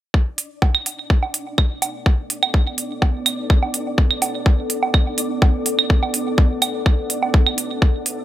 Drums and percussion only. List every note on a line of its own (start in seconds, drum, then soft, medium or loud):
0.14 kick loud
0.38 open hi-hat medium
0.62 kick loud
0.62 low woodblock soft
0.75 claves medium
0.86 open hi-hat medium
1.10 kick loud
1.23 low woodblock soft
1.34 open hi-hat medium
1.58 kick loud
1.58 claves medium
1.82 open hi-hat medium
1.82 low woodblock soft
2.06 kick loud
2.30 open hi-hat medium
2.43 claves medium
2.43 low woodblock soft
2.54 kick loud
2.78 open hi-hat medium
3.02 kick loud
3.02 low woodblock soft
3.26 open hi-hat medium
3.26 claves medium
3.50 kick loud
3.63 low woodblock soft
3.74 open hi-hat medium
3.98 kick loud
4.11 claves medium
4.22 open hi-hat medium
4.22 low woodblock soft
4.46 kick loud
4.70 open hi-hat medium
4.83 low woodblock soft
4.94 kick loud
4.94 claves medium
5.18 open hi-hat medium
5.42 kick loud
5.42 low woodblock soft
5.66 open hi-hat medium
5.79 claves medium
5.90 kick loud
6.03 low woodblock soft
6.14 open hi-hat medium
6.38 kick loud
6.62 open hi-hat medium
6.62 claves medium
6.62 low woodblock soft
6.86 kick loud
7.10 open hi-hat medium
7.23 low woodblock soft
7.34 kick loud
7.46 claves medium
7.58 open hi-hat medium
7.82 kick loud
8.06 open hi-hat medium